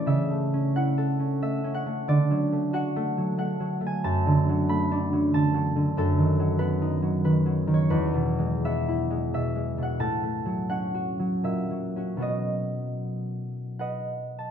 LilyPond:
<<
  \new Staff \with { instrumentName = "Harp" } { \time 3/4 \key d \lydian \tempo 4 = 90 << { <a' cis'' d'' e''>4 fis''4 e''8 fis''8 | d''4 fis''4 fis''8. gis''16 | a''4 b''4 a''4 | \key b \mixolydian a'4 b'4 b'8. cis''16 |
b'4 e''4 e''8. fis''16 | a''4 fis''4 e''4 | dis''2 fis''8. a''16 | } \\ { r2. | r2. | r2. | r2. |
r2. | r2. | r2 <b' dis''>4 | } >> }
  \new Staff \with { instrumentName = "Harp" } { \clef bass \time 3/4 \key d \lydian \tuplet 3/2 { <cis a cis' e'>8 a8 cis'8 e'8 a'8 cis'8 a8 cis'8 a8 } | \tuplet 3/2 { d8 fis8 a8 fis'8 a8 fis8 a8 fis8 a8 } | \tuplet 3/2 { fis,8 d8 fis8 a8 d'8 fis8 d8 fis8 d8 } | \key b \mixolydian \tuplet 3/2 { fis,8 dis8 fis8 b8 dis'8 fis8 dis8 fis8 dis8 } |
\tuplet 3/2 { e,8 b,8 gis8 b8 e'8 gis8 b,8 gis8 b,8 } | \tuplet 3/2 { a,8 a8 fis8 cis'8 fis'8 fis8 ais,8 fis8 <cis' fis'>8 } | <b, fis b fis'>2. | }
>>